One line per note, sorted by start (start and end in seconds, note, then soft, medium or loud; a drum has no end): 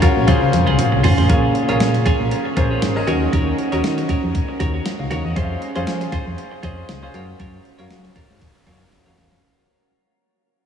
0.00 0.02 C#4 loud
0.00 0.26 C#4 medium
0.00 0.02 F4 medium
0.00 0.17 F4 medium
0.00 0.26 F4 medium
0.00 0.02 F#4 medium
0.00 0.28 F#4 medium
0.00 0.03 A#4 medium
0.00 0.16 A#4 loud
0.00 0.28 A#4 medium
0.00 0.15 C#5 medium
0.00 0.03 F5 loud
0.00 0.27 F5 medium
0.00 kick medium
0.00 closed hi-hat medium
0.16 0.25 A#1 medium
0.16 muted clean electric guitar stroke soft
0.27 0.38 C#2 loud
0.27 1.00 C#3 medium
0.27 1.24 C#4 medium
0.27 0.42 F4 medium
0.27 1.24 F4 medium
0.27 1.24 G#4 medium
0.27 0.41 G#4 loud
0.27 1.25 C5 medium
0.27 0.40 C5 loud
0.27 1.25 F5 loud
0.27 kick medium
0.27 closed hi-hat medium
0.27 high tom medium
0.41 0.50 C#3 loud
0.41 muted clean electric guitar stroke soft
0.53 0.64 F2 loud
0.53 muted clean electric guitar stroke soft
0.53 closed hi-hat medium
0.53 mid tom medium
0.67 0.76 C#2 medium
0.67 0.77 F4 medium
0.67 0.77 G#4 medium
0.67 0.77 C5 medium
0.67 mid tom medium
0.78 muted clean electric guitar stroke soft
0.78 closed hi-hat loud
0.78 mid tom loud
0.92 1.01 C2 medium
0.92 muted clean electric guitar stroke medium
1.03 1.15 G#1 loud
1.03 1.18 F4 medium
1.03 1.17 G#4 medium
1.03 1.16 C5 medium
1.03 floor tom loud
1.03 open hi-hat medium
1.18 1.27 A1 medium
1.18 1.28 F4 soft
1.18 1.28 G#4 medium
1.18 1.27 C5 medium
1.18 floor tom loud
1.29 1.49 A#1 loud
1.29 2.02 A#2 medium
1.29 1.66 C#4 medium
1.29 1.53 F4 medium
1.29 1.67 G#4 medium
1.29 1.53 G#4 medium
1.29 1.67 A#4 medium
1.29 1.54 C#5 medium
1.29 1.67 F5 medium
1.29 kick loud
1.29 closed hi-hat medium
1.55 muted clean electric guitar stroke soft
1.55 closed hi-hat medium
1.68 1.78 A#1 medium
1.68 2.52 C#4 medium
1.68 1.79 F4 medium
1.68 2.52 G#4 medium
1.68 1.79 G#4 medium
1.68 2.52 A#4 medium
1.68 1.78 C#5 medium
1.68 2.53 F5 medium
1.68 closed hi-hat medium
1.80 2.00 A#2 medium
1.80 muted clean electric guitar stroke soft
1.80 snare loud
1.80 closed hi-hat medium
1.94 muted clean electric guitar stroke soft
1.94 closed hi-hat soft
2.05 2.20 F4 medium
2.05 2.20 G#4 medium
2.05 2.19 C#5 medium
2.05 kick medium
2.05 closed hi-hat medium
2.20 2.29 A#1 medium
2.20 muted clean electric guitar stroke medium
2.31 muted clean electric guitar stroke soft
2.31 closed hi-hat medium
2.45 muted clean electric guitar stroke soft
2.56 2.76 A#1 medium
2.56 2.93 C#4 medium
2.56 2.71 F4 medium
2.56 2.94 G#4 medium
2.56 2.70 G#4 medium
2.56 2.94 A#4 medium
2.56 2.94 C5 medium
2.56 2.69 C#5 medium
2.56 kick medium
2.56 closed hi-hat medium
2.70 2.81 F4 medium
2.70 2.81 G#4 medium
2.70 2.80 C#5 medium
2.82 3.01 G#1 medium
2.82 snare loud
2.82 closed hi-hat medium
2.95 3.05 C#4 medium
2.95 3.07 G#4 medium
2.95 3.06 A#4 medium
2.95 3.06 D#5 medium
2.95 muted clean electric guitar stroke soft
3.07 3.27 D#2 medium
3.07 3.80 D#3 medium
3.07 3.68 C#4 medium
3.07 3.68 F#4 medium
3.07 3.22 F#4 medium
3.07 3.69 A#4 medium
3.07 3.21 A#4 medium
3.07 3.20 C#5 loud
3.07 3.69 D#5 medium
3.07 closed hi-hat medium
3.22 muted clean electric guitar stroke soft
3.33 3.52 D#2 loud
3.33 3.56 F#4 medium
3.33 3.57 A#4 medium
3.33 3.57 C#5 medium
3.33 kick loud
3.33 closed hi-hat medium
3.58 muted clean electric guitar stroke soft
3.58 closed hi-hat medium
3.72 3.81 D#2 medium
3.72 4.55 C#4 medium
3.72 4.55 F#4 medium
3.72 3.83 F#4 soft
3.72 4.56 A#4 medium
3.72 3.82 A#4 medium
3.72 3.82 C#5 medium
3.72 4.56 D#5 medium
3.72 closed hi-hat soft
3.84 4.03 D#3 loud
3.84 snare loud
3.84 closed hi-hat medium
3.98 muted clean electric guitar stroke medium
3.98 closed hi-hat soft
4.09 4.24 F#4 medium
4.09 4.23 A#4 medium
4.09 4.22 C#5 medium
4.09 kick medium
4.09 closed hi-hat medium
4.23 4.32 F2 medium
4.23 muted clean electric guitar stroke soft
4.35 muted clean electric guitar stroke soft
4.35 kick medium
4.35 closed hi-hat medium
4.49 muted clean electric guitar stroke soft
4.60 4.79 D#2 loud
4.60 4.74 F#4 medium
4.60 4.73 A#4 medium
4.60 4.72 C#5 medium
4.60 kick medium
4.60 closed hi-hat medium
4.74 4.84 F#4 soft
4.74 4.84 A#4 soft
4.74 4.84 C#5 medium
4.86 snare loud
4.86 closed hi-hat medium
4.99 5.08 C#2 medium
4.99 5.10 F5 medium
4.99 muted clean electric guitar stroke soft
5.11 5.21 D#2 medium
5.11 5.26 F#4 medium
5.11 5.25 A#4 medium
5.11 5.24 C#5 medium
5.11 5.24 F#5 medium
5.11 closed hi-hat medium
5.25 5.33 E2 medium
5.25 5.49 D#5 medium
5.25 muted clean electric guitar stroke soft
5.36 5.55 F2 loud
5.36 5.73 C#4 medium
5.36 5.60 F4 medium
5.36 5.73 G#4 medium
5.36 5.60 G#4 medium
5.36 5.74 C5 medium
5.36 5.61 C5 medium
5.36 5.43 E5 medium
5.36 kick loud
5.36 closed hi-hat medium
5.43 5.75 F5 medium
5.62 muted clean electric guitar stroke soft
5.62 closed hi-hat medium
5.75 5.84 F2 medium
5.75 6.59 C#4 medium
5.75 5.86 F4 soft
5.75 6.59 G#4 medium
5.75 5.86 G#4 soft
5.75 5.85 C5 medium
5.75 6.59 C5 medium
5.75 6.59 F5 medium
5.75 closed hi-hat medium
5.87 6.06 F3 medium
5.87 muted clean electric guitar stroke soft
5.87 snare loud
5.87 closed hi-hat medium
6.01 muted clean electric guitar stroke medium
6.01 closed hi-hat soft
6.12 6.27 F4 medium
6.12 6.26 G#4 medium
6.12 6.25 C5 medium
6.12 kick medium
6.12 closed hi-hat medium
6.26 6.35 F2 medium
6.26 muted clean electric guitar stroke medium
6.38 muted clean electric guitar stroke soft
6.38 closed hi-hat medium
6.52 muted clean electric guitar stroke soft
6.62 6.82 F2 medium
6.62 7.00 C#4 medium
6.62 6.77 F4 medium
6.62 7.00 G#4 medium
6.62 6.77 G#4 medium
6.62 7.01 C5 medium
6.62 6.76 C5 medium
6.62 7.01 D#5 medium
6.62 kick medium
6.62 closed hi-hat medium
6.77 6.88 F4 soft
6.77 6.87 G#4 medium
6.77 6.87 C5 soft
6.89 7.08 C#2 medium
6.89 muted clean electric guitar stroke soft
6.89 snare loud
6.89 closed hi-hat medium
7.02 7.12 C#4 medium
7.02 7.13 F4 soft
7.02 7.14 G#4 medium
7.02 7.13 G#4 medium
7.02 7.12 C5 medium
7.02 7.14 C5 medium
7.02 7.13 F5 medium
7.14 7.33 F#2 loud
7.14 7.75 C#4 medium
7.14 7.29 F4 medium
7.14 7.75 F#4 medium
7.14 7.75 A#4 medium
7.14 7.28 A#4 medium
7.14 7.27 C#5 medium
7.14 7.76 F5 medium
7.14 closed hi-hat medium
7.28 muted clean electric guitar stroke soft
7.39 7.59 F#2 loud
7.39 7.63 F4 medium
7.39 7.64 A#4 medium
7.39 7.64 C#5 medium
7.39 kick loud
7.39 closed hi-hat medium
7.65 muted clean electric guitar stroke soft
7.65 closed hi-hat medium
7.78 7.88 F#2 medium
7.78 8.62 C#4 medium
7.78 7.89 F4 soft
7.78 8.62 F#4 medium
7.78 7.89 A#4 medium
7.78 8.63 A#4 medium
7.78 7.88 C#5 medium
7.78 8.63 F5 medium
7.78 closed hi-hat soft
7.90 8.10 F#3 medium
7.90 muted clean electric guitar stroke soft
7.90 snare medium
7.90 closed hi-hat medium
8.04 muted clean electric guitar stroke soft
8.04 closed hi-hat soft
8.16 8.31 F4 medium
8.16 8.30 A#4 medium
8.16 8.29 C#5 medium
8.16 kick medium
8.16 closed hi-hat medium
8.30 8.38 G#2 medium
8.30 muted clean electric guitar stroke soft
8.41 muted clean electric guitar stroke soft
8.41 kick medium
8.41 closed hi-hat medium
8.55 muted clean electric guitar stroke soft
8.66 8.86 F#2 loud
8.66 9.04 C#4 medium
8.66 8.81 F4 medium
8.66 9.04 F#4 medium
8.66 9.04 A#4 medium
8.66 8.80 A#4 medium
8.66 8.79 C#5 medium
8.66 9.04 F5 medium
8.66 kick medium
8.66 closed hi-hat medium
8.81 8.91 F4 soft
8.81 8.91 A#4 medium
8.81 8.90 C#5 medium
8.92 muted clean electric guitar stroke soft
8.92 snare medium
8.92 closed hi-hat medium
9.06 9.15 F2 medium
9.06 9.16 C#4 medium
9.06 9.17 F4 medium
9.06 9.16 F#4 medium
9.06 9.17 A#4 medium
9.06 9.18 C#5 medium
9.06 9.17 F5 medium
9.17 9.28 E2 medium
9.17 9.42 C#4 medium
9.17 9.29 F4 soft
9.17 9.42 F#4 medium
9.17 9.42 A#4 medium
9.17 9.30 A#4 medium
9.17 9.30 C#5 medium
9.17 9.42 F5 medium
9.17 snare medium
9.17 closed hi-hat medium
9.31 9.40 F2 medium
9.31 muted clean electric guitar stroke soft
9.31 snare medium